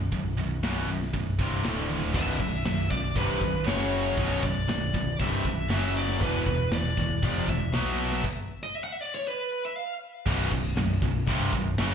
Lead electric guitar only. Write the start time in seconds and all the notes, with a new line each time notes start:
2.16 E5
2.91 D5
3.17 B4
3.65 C#5
4.43 D5
5.20 E5
5.97 D5
6.21 B4
6.74 D5
7.49 E5
8.63 D#5
8.76 E5
8.84 F#5
8.92 E5
9.01 D5
9.15 C#5
9.28 B4
9.65 E5
9.77 F5